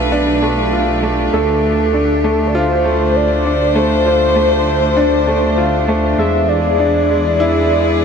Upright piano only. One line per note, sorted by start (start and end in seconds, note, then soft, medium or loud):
0.00 0.42 A3 medium
0.00 0.12 D4 medium
0.00 0.73 F4 medium
0.12 0.41 D4 loud
0.42 0.71 A3 medium
0.73 1.02 F4 medium
1.03 1.32 A3 medium
1.33 1.62 A3 medium
1.94 2.22 D4 medium
2.24 2.53 A3 medium
2.55 2.83 F4 loud
2.85 3.14 A3 medium
3.45 3.74 D4 medium
3.75 4.04 A3 medium
4.06 4.35 F4 medium
4.36 4.65 A3 medium
4.97 5.25 D4 loud
5.27 5.56 A3 medium
5.58 5.86 F4 medium
5.88 6.17 A3 medium
6.18 6.47 G#3 medium
6.79 7.08 D4 medium
7.09 7.38 G#3 medium
7.40 7.68 E4 loud
7.70 7.99 G#3 medium